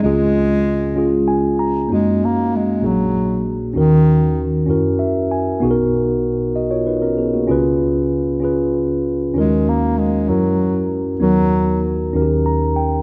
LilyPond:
<<
  \new Staff \with { instrumentName = "Tine electric piano" } { \time 6/8 \key fis \major \tempo 4. = 64 << { r2 gis''8 ais''8 | r2. | r2 e''8 gis''8 | r4. <fis' dis''>16 <eis' cis''>16 <dis' b'>16 <cis' ais'>16 <b gis'>16 <ais fis'>16~ |
<ais fis'>16 r2 r8. | r2. | r2 ais''8 g''8 | } \\ { <gis cis' eis' gis'>4. <gis cis' eis' gis'>4. | <ais cis' dis' fis'>4. <ais cis' d' fis' gis'>4. | <cis' dis' fis' ais'>4. <cis' e' fis' ais'>4. | <b dis' fis' gis' ais'>4. r4. |
<cis' eis' gis' b'>4. <cis' eis' gis' b'>4. | <cis' dis' eis' fis' ais'>4. <cis' e' fis' ais'>4. | <b dis' fis' ais'>4. <cis' dis' fis' g' ais'>4. | } >> }
  \new Staff \with { instrumentName = "Tine electric piano" } { \clef bass \time 6/8 \key fis \major <cis, cis>2. | fis,4. <ais,, ais,>4. | <dis, dis>4. fis,4. | <b,, b,>2. |
<cis, cis>2. | <dis, dis>4. fis,4. | <dis, dis>4. <dis, dis>4. | }
  \new Staff \with { instrumentName = "Bass clarinet" } { \clef bass \time 6/8 \key fis \major gis2 r4 | gis8 ais8 gis8 fis4 r8 | dis4 r2 | r2. |
r2. | gis8 ais8 gis8 fis4 r8 | fis4 r2 | }
>>